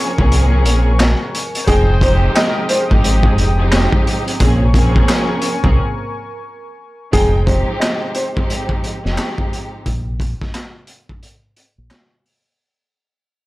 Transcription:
Already playing: A#4 G#5 C#6
0.17 C2 F3 A#3 C4 C#4 G#4, kick
0.32 closed hi-hat
0.65 A#1, closed hi-hat
0.99 snare, clap, closed hi-hat
1.34 closed hi-hat
1.55 closed hi-hat
1.65 F1 F3 G#3 C4 D#4 G#4 C5 G5 D#6, kick, closed hi-hat
2.00 F3 G#3 C4 D#4 G4 C5, kick, closed hi-hat
2.35 D#4 G4 A#4 D#5, snare, clap, closed hi-hat
2.69 D#4 G4 A#4 C5, closed hi-hat
2.89 G#1 F3 G#3 C4 D#4 G4, kick
3.04 closed hi-hat
3.23 C4 D#4 G#4, kick
3.38 F1, closed hi-hat
3.58 F3 G#3 C4 D#4 G4 G#4
3.72 snare, clap, closed hi-hat
3.92 kick
4.07 closed hi-hat
4.27 closed hi-hat
4.40 A#1 F3 A#3 C4 C#4 G#4 A#4 G#5 C#6, kick, closed hi-hat
4.73 F3 A#3 C4 C#4 G#4, kick, closed hi-hat
4.96 kick
5.08 snare, clap, closed hi-hat
5.41 closed hi-hat
5.63 C2 F3 A#3 C4 C#4 G#4, kick
7.12 F1 F3 G#3 C4 D#4 G#4 G5, kick, closed hi-hat
7.46 F3 G#3 C4 D#4 G4 C5, kick, closed hi-hat
7.80 D#5, snare, clap, closed hi-hat
8.14 C5, closed hi-hat
8.35 F3 G#3 C4 D#4 G4, kick
8.50 closed hi-hat
8.69 kick
8.84 closed hi-hat
9.04 F1 F3 G#3 C4 D#4 G4, snare
9.17 snare, clap, closed hi-hat
9.38 kick
9.53 closed hi-hat
9.86 A#1, kick, closed hi-hat
10.20 kick, closed hi-hat
10.42 kick, snare
10.54 snare, clap, closed hi-hat
10.87 closed hi-hat
11.09 kick
11.22 closed hi-hat
11.56 closed hi-hat
11.78 A#1
11.90 snare, clap, closed hi-hat
12.25 open hi-hat

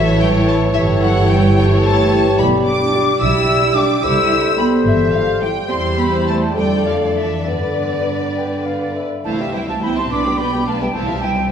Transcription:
Already playing: A1 E3 E4 A4 C#5 E5
0.19 G3 G5
0.47 A3 A5
0.73 G1 E3 E4 G4 A4 C#5 E5
1.01 F#3 F#5
1.29 G3 G5
1.57 E3 G3 E4 A4 C#5 G5
1.84 A3 A5
2.38 B1 G3 B3 D5 B5
2.66 D4 D6
2.94 G3 F4 G4 D5
3.20 B1 E4 G4 E6
3.74 G3 D4 F4 G4 D5 D6
4.03 C2 E4 A4 C5 E6
4.57 G3 B3 E4 G4 C5 B5
4.84 G1 E3 E5
5.13 F3 F5
5.41 G3 E4 G4 C5 G5
5.69 E2 G3 C4 E4 G4 C5 C6
5.97 B3 B5
6.26 A3 A5
6.55 F2 D3 G3 A3 D4 A4 D5 G5
6.85 F3 F5
7.15 E3 E5
7.45 G2 D3 B3 D4 B4 D5
8.35 G5
8.65 F5
8.95 E5
9.24 C2 E3 A3 E4 C5 F5 A5
9.39 G3 C4 G4 E5
9.54 E3 G3 E4 C5 E5 G5
9.68 G3 A3 C4 G4 E5 F5 A5
9.82 E3 B3 E4 C5 G5 B5
9.97 G3 C4 G4 E5 A5 C6
10.10 B1 B3 D4 B4 D5 B5 D6
10.25 G3 B3 G4 B4
10.38 B3 D4 B4 D5 G5 B5
10.52 G3 B3 G4 B4
10.66 A3 B3 D4 B4 D5 F5 A5
10.81 G3 B3 G4 B4 E5 G5
10.94 C2 E3 A3 E4 C5 F5 A5
11.08 G3 C4 G4 E5
11.22 E3 G3 E4 C5 E5 G5
11.36 G3 C4 G4 E5

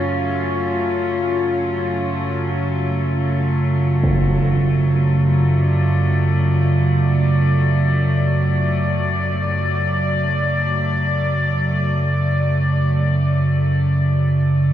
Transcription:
Already playing: F#2 C#3 F#3 A3 C#4 F4
4.03 impact
5.56 D5

